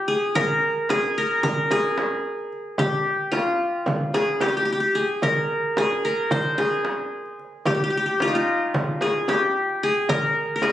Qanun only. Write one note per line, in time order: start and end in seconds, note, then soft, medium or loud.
0.00 0.14 G4 medium
0.08 0.90 G#4 medium
0.35 1.17 A#4 medium
0.90 1.71 G#4 medium
1.18 1.43 A#4 medium
1.43 2.56 A#4 medium
1.71 2.85 G#4 medium
2.79 4.04 G4 medium
3.32 4.66 F4 medium
4.14 4.47 G#4 medium
4.41 4.48 G4 medium
4.48 4.56 G4 medium
4.57 4.65 G4 medium
4.65 4.72 G4 medium
4.72 4.80 G4 medium
4.80 5.01 G4 medium
4.95 5.78 G#4 medium
5.23 6.04 A#4 medium
5.78 6.57 G#4 medium
6.05 7.18 A#4 medium
6.32 7.37 C5 medium
6.58 7.72 G#4 medium
7.66 7.74 G4 medium
7.75 7.83 G4 medium
7.84 7.90 G4 medium
7.90 7.97 G4 medium
7.97 8.05 G4 medium
8.06 9.08 G4 medium
8.22 8.34 F4 medium
8.28 9.72 D#4 medium
8.35 9.70 F4 medium
9.02 9.35 G#4 medium
9.29 9.89 G4 medium
9.83 10.62 G#4 medium
10.09 10.55 A#4 medium
10.56 10.72 A#4 medium
10.63 10.72 G#4 medium